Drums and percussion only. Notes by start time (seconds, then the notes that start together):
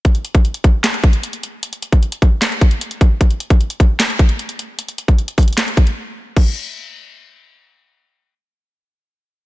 0.05 kick, closed hi-hat
0.15 closed hi-hat
0.25 closed hi-hat
0.35 kick, closed hi-hat
0.45 closed hi-hat
0.54 closed hi-hat
0.64 kick, closed hi-hat
0.84 snare, clap, closed hi-hat
0.94 closed hi-hat
1.04 kick, closed hi-hat
1.13 closed hi-hat
1.23 closed hi-hat
1.33 closed hi-hat
1.43 closed hi-hat
1.63 closed hi-hat
1.73 closed hi-hat
1.82 closed hi-hat
1.92 kick, closed hi-hat
2.03 closed hi-hat
2.12 closed hi-hat
2.22 kick, closed hi-hat
2.42 snare, clap, closed hi-hat
2.52 closed hi-hat
2.61 kick, closed hi-hat
2.71 closed hi-hat
2.81 closed hi-hat
2.91 closed hi-hat
3.01 kick, closed hi-hat
3.21 kick, closed hi-hat
3.31 closed hi-hat
3.40 closed hi-hat
3.50 kick, closed hi-hat
3.61 closed hi-hat
3.70 closed hi-hat
3.80 kick, closed hi-hat
4.00 snare, clap, closed hi-hat
4.10 closed hi-hat
4.19 kick, closed hi-hat
4.29 closed hi-hat
4.39 closed hi-hat
4.49 closed hi-hat
4.59 closed hi-hat
4.79 closed hi-hat
4.89 closed hi-hat
4.98 closed hi-hat
5.08 kick, closed hi-hat
5.19 closed hi-hat
5.28 closed hi-hat
5.38 kick, closed hi-hat, open hi-hat
5.43 closed hi-hat
5.48 closed hi-hat
5.53 closed hi-hat
5.58 snare, clap, closed hi-hat
5.68 closed hi-hat
5.77 kick, closed hi-hat
5.87 closed hi-hat
6.37 kick, crash